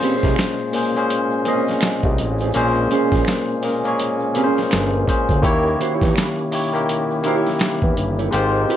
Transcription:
Already playing: tine electric piano A#2 A#3 C#4 G#4 C5 F5 G#5, tonewheel organ G#3 A#3 C#4
0.01 clean electric guitar C4 G4 B4, closed hi-hat, shaker
0.17 clean electric guitar C#4 G#4 C5
0.23 analog synth bass C2, kick, snare, closed hi-hat, shaker
0.36 finger snap, snare, closed hi-hat, shaker
0.58 shaker
0.73 tine electric piano A#2 A#3 C#4 G#4 C5, open hi-hat, shaker
0.95 tine electric piano A#2 A#3 C#4 G#4 C5, closed hi-hat, shaker
1.09 muted clean electric guitar stroke, closed hi-hat, shaker
1.31 shaker
1.45 tine electric piano A#2 A#3 C4 G#4 D#5, clean electric guitar C#4 G#4 C5, closed hi-hat, shaker
1.53 tine electric piano C#4
1.67 snare, closed hi-hat, shaker
1.81 finger snap, snare, closed hi-hat, shaker
2.02 analog synth bass C2, kick, shaker
2.18 analog synth bass A1, closed hi-hat
2.38 clean electric guitar C5, closed hi-hat, shaker
2.43 clean electric guitar C#4 G#4
2.52 tine electric piano A#2 A#3 C#4, closed hi-hat, shaker
2.56 analog synth bass A#1, tine electric piano G#4 C5
2.75 shaker
2.89 clean electric guitar C#4 G#4, closed hi-hat, shaker
2.93 clean electric guitar C5
3.12 analog synth bass A#1, kick, snare, closed hi-hat, shaker
3.25 finger snap, snare, closed hi-hat, shaker
3.48 shaker
3.62 tine electric piano A#2 A#3 C#4 G#4 A#4, open hi-hat, shaker
3.84 tine electric piano A#2 A#3 C#4 G#4 C#5, closed hi-hat, shaker
3.98 muted clean electric guitar stroke, closed hi-hat, shaker
4.20 shaker
4.33 tine electric piano A#2 A#3 C#4 G#4 A#4, clean electric guitar C#4 G#4 C5, closed hi-hat, shaker
4.44 tine electric piano C5
4.57 snare, closed hi-hat, shaker
4.71 analog synth bass G1, finger snap, snare, closed hi-hat, shaker
4.93 shaker
5.06 tine electric piano A#2 A#3 C#4 G#4 C5, kick, closed hi-hat
5.29 analog synth bass D2, kick, closed hi-hat, shaker
5.42 analog synth bass D#2, tine electric piano D#3 A#3 E4 G4 C#5, tonewheel organ D#3 E4 G4, kick, closed hi-hat, shaker
5.67 shaker
5.80 clean electric guitar D#4 F#4 C5, closed hi-hat, shaker
5.95 clean electric guitar E4 G4 C#5
6.01 analog synth bass E2, kick, snare, closed hi-hat, shaker
6.16 finger snap, snare, closed hi-hat, shaker
6.38 shaker
6.51 tine electric piano D#3 A#3 E4 G4 C#5, open hi-hat, shaker
6.72 tine electric piano D#3 A#3 E4 G4 A#4, closed hi-hat, shaker
6.89 muted clean electric guitar stroke, closed hi-hat, shaker
7.10 shaker
7.23 tine electric piano D#3 A#3 E4 G4 A#4, clean electric guitar E4, closed hi-hat, shaker
7.27 clean electric guitar G4 C#5
7.46 snare, closed hi-hat, shaker
7.59 finger snap, snare, closed hi-hat, shaker
7.82 analog synth bass E2, kick, shaker
7.97 analog synth bass G1, closed hi-hat
8.19 clean electric guitar E4 G4 C#5, closed hi-hat, shaker
8.31 analog synth bass G#1, tine electric piano G#3 D#4 F4 G4 A#4 C5, tonewheel organ G#3 C4, closed hi-hat, shaker
8.55 shaker
8.68 clean electric guitar E4 F#4 B4, closed hi-hat, shaker

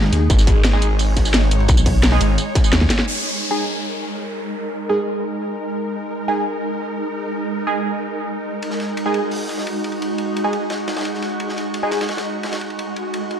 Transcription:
Already playing: wobble bass G#1, synth drone G#3 D#4 G#4
0.04 snare
0.12 wobble bass D#2, snare, closed hi-hat, ride
0.30 detuned saw bass G#1, synth drone C#5, kick, closed hi-hat, ride, tambourine
0.38 snare, tambourine
0.47 kick, snare, closed hi-hat, ride, tambourine
0.64 snare, closed hi-hat, ride, tambourine
0.73 synth stab G#3 D#4 G#4, snare
0.82 closed hi-hat, ride, tambourine
0.99 closed hi-hat, open hi-hat, tambourine
1.16 kick, snare, closed hi-hat, ride
1.25 snare, tambourine
1.34 snare, closed hi-hat, ride, tambourine
1.51 closed hi-hat, ride
1.60 ride
1.68 wobble bass B1, kick, closed hi-hat, ride, tambourine
1.77 tambourine
1.86 kick, closed hi-hat, open hi-hat, tambourine
2.03 snare, closed hi-hat, ride, tambourine
2.11 synth stab G#3 D#4 G#4, snare
2.21 detuned saw bass G#1, closed hi-hat, ride, tambourine
2.38 closed hi-hat, tambourine
2.55 kick, snare, closed hi-hat, ride, tambourine
2.64 tambourine
2.72 wobble bass D#2, snare, closed hi-hat, ride, tambourine
2.81 kick, snare
2.90 snare, closed hi-hat, ride, tambourine
2.99 snare
3.07 synth drone G#3 D#4 A#4, downlifter
3.51 synth stab G#3 D#4 G#4
4.89 synth stab G#3 D#4 G#4
6.28 synth stab G#3 D#4 G#4
7.67 synth stab G#3 D#4 G#4
8.62 synth drone F#4, ride
8.70 snare
8.80 snare, ride
8.97 ride
9.06 synth stab G#3 D#4 G#4
9.14 ride
9.31 open hi-hat
9.49 snare, ride
9.58 snare
9.67 ride
9.84 ride
9.92 ride
10.02 ride
10.18 ride
10.36 ride
10.44 synth stab G#3 D#4 G#4
10.53 ride
10.70 snare, ride
10.88 snare, ride
10.96 snare, ride
11.01 snare, ride
11.05 ride
11.14 snare
11.22 snare, ride
11.40 ride
11.49 snare
11.56 snare, ride
11.74 ride
11.83 synth stab G#3 D#4 G#4
11.91 snare, ride
12.01 snare, ride
12.09 snare, ride
12.17 snare, ride
12.43 snare, ride
12.52 snare, ride
12.61 ride
12.70 ride
12.79 ride
12.96 ride
13.14 ride
13.31 ride

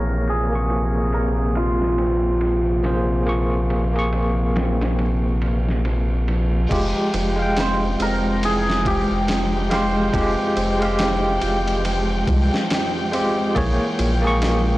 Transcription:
Already playing: sub bass A#1, string section C3, felt piano E3, tine electric piano A#3 G#4 C#5, santur A#4
0.27 felt piano F4, santur G#4, ride
0.50 tine electric piano A#3 G#4
0.55 tine electric piano C#6
0.70 felt piano F3, ride
1.13 felt piano F3, santur A#4, ride
1.55 felt piano F2, santur F4, ride
1.82 snare
1.98 felt piano C4, ride
2.41 felt piano F3, ride
2.83 tine electric piano A#3 G#4 C5, felt piano F4, snare, ride
3.26 felt piano F3, tine electric piano A#3 G#4 C#6, ride
3.70 felt piano F3, ride
3.93 tine electric piano A#3 G#4, ride
3.99 tine electric piano C#6
4.13 felt piano F2, ride
4.56 felt piano C4, snare, ride
4.81 snare, ride
4.99 felt piano F3, ride
5.42 felt piano F4, ride
5.69 snare
5.85 felt piano F3, ride
6.28 felt piano F3, ride
6.69 sub bass F1, felt piano F3, tine electric piano G#3 F4 G4, string section G#3 G5, kick, crash, ride
7.14 sub bass F1, felt piano F3, ride
7.36 tine electric piano G#3 F5
7.42 tine electric piano G5
7.57 felt piano F2, santur C5, snare, ride
8.00 sub bass F1, felt piano C4, santur A#4, ride
8.43 felt piano E3, santur G#4, ride
8.70 snare
8.85 felt piano F4, santur G4, kick, ride
9.11 sub bass F1
9.28 felt piano F3, snare, ride
9.69 felt piano F3, tine electric piano G#3 G4 F5, santur C5, snare, ride
10.13 sub bass F1, felt piano F2, tine electric piano G#3 F4 G4, kick, ride
10.56 sub bass F1, felt piano C4, ride
10.79 tine electric piano G#3 F5, ride
10.85 tine electric piano G4
10.99 felt piano E3, snare, ride
11.41 sub bass F1, felt piano F4, ride
11.68 ride
11.85 felt piano F3, ride
12.27 sub bass C2, felt piano F3, kick, ride
12.54 snare
12.70 felt piano F2, snare, ride
13.12 tine electric piano G#3 F4 G4, felt piano C4, ride
13.55 sub bass A#1, felt piano E3, tine electric piano A#3 G#4 C#5, kick, ride
13.98 sub bass A#1, felt piano F4, ride
14.21 tine electric piano A#3 G#4
14.27 tine electric piano C#6
14.41 felt piano F3, snare, ride

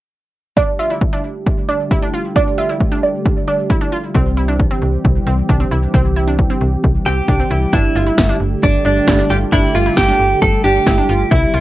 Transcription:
0.57 analog synth pad D3 G3 A3 G4, synth pluck D4 D5, kick
0.79 synth pluck F4 E5
0.90 synth pluck E4
1.01 kick
1.13 synth pluck D4
1.47 kick
1.69 synth pluck D4 D5
1.91 synth pluck E4, kick
2.02 synth pluck D4
2.14 synth pluck F4
2.36 synth pluck D4 D5, kick
2.58 synth pluck F4 E5
2.69 synth pluck E4
2.80 kick
2.92 synth pluck D4
3.03 synth pluck D5
3.26 kick
3.48 synth pluck D4 D5
3.70 synth pluck E4, kick
3.81 synth pluck D4
3.92 synth pluck F4
4.14 fm bass C2, analog synth pad E3 C4 G4, synth pluck C4, kick
4.37 synth pluck E4
4.48 synth pluck D4
4.60 kick
4.71 synth pluck C4
4.82 fm bass C2
5.05 fm bass C2, kick
5.27 fm bass C2, synth pluck C4
5.49 fm bass C2, synth pluck D4, kick
5.60 synth pluck C4
5.71 fm bass C2, synth pluck E4
5.94 fm bass C2, synth pluck C4, kick
6.16 synth pluck E4
6.27 synth pluck D4
6.39 kick
6.50 synth pluck C4
6.61 fm bass C2
6.84 fm bass C2, kick
7.06 fm bass C2, synth pluck C4, clean electric guitar G4
7.28 fm bass C2, synth pluck D4, kick
7.40 synth pluck C4
7.51 fm bass C2, synth pluck E4
7.73 fm bass G1, analog synth pad D3 G3 A3 G4, synth pluck D4, clean electric guitar E4, kick
7.95 fm bass G1, synth pluck F4
8.07 synth pluck E4
8.18 fm bass G1, kick, snare
8.29 synth pluck D4
8.40 fm bass G1
8.63 fm bass G1, clean electric guitar D4, kick
8.85 fm bass G1, synth pluck D4, clean electric guitar D4
9.07 fm bass G1, synth pluck E4, kick, snare
9.19 synth pluck D4
9.30 fm bass G1, synth pluck F4, clean electric guitar G4
9.52 fm bass G1, synth pluck D4, clean electric guitar E4, kick
9.75 fm bass G1, synth pluck F4, clean electric guitar F4
9.86 synth pluck E4
9.97 fm bass G1, clean electric guitar G4, kick, snare
10.08 synth pluck D4
10.19 fm bass G1
10.42 fm bass G1, clean electric guitar A4, kick
10.64 fm bass G1, synth pluck D4, clean electric guitar G4
10.86 fm bass G1, synth pluck E4, kick, snare
10.98 synth pluck D4
11.09 fm bass G1, synth pluck F4
11.31 fm bass C2, analog synth pad C3 E3 E4, clean electric guitar E4, synth pluck E4, kick
11.54 fm bass C2, synth pluck F4

